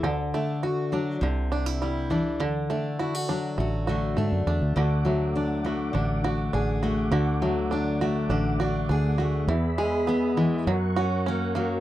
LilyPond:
<<
  \new Staff \with { instrumentName = "Tonewheel organ" } { \time 4/4 \key d \lydian \tempo 4 = 102 r1 | r1 | <a fis'' d'''>1~ | <a fis'' d'''>1 |
<gis' e'' b''>2 <ais' fis'' cis'''>2 | }
  \new Staff \with { instrumentName = "Five-string banjo" } { \time 4/4 \key d \lydian d8 a8 fis'8 d'8 d8 d'16 e'16 g8 d'8 | d8 a8 fis'8 d'8 a8 fis'8 a8 d'8 | <d fis'>8 a8 d'8 fis'8 d'8 fis'8 d'8 fis'8 | <d fis'>8 a8 d'8 fis'8 d'8 fis'8 d'8 fis'8 |
e8 gis8 b8 gis8 fis8 fis'8 cis'8 ais8 | }
  \new Staff \with { instrumentName = "Steel-string acoustic guitar" } { \time 4/4 \key d \lydian << { r8 d'8 fis'8 d'8 r8 d'8 e'8 d'8 | r8 d'8 e'16 fis'16 d'8 fis'8 a8 d'8 a8~ | a4 d'8 a4 d'8 gis'8 a8~ | a4 d'8 a4 d'8 gis'8 a8 |
r8 gis'8 b4 r8 cis'8 ais4 | } \\ { d4. fis8 c4. e8 | d4. fis4 d4. | d8 fis4. d2 | d8 fis4. d2 |
e,4. e8 fis,4. fis8 | } >> }
  \new Staff \with { instrumentName = "Fingered electric bass" } { \clef bass \time 4/4 \key d \lydian d,8 r4. c,2 | d,8 r4. a,,4 gis,16 fis,16 e,16 d,16 | d,2 a,,4 a,,4 | d,2 a,,4 d,4 |
e,2 fis,2 | }
>>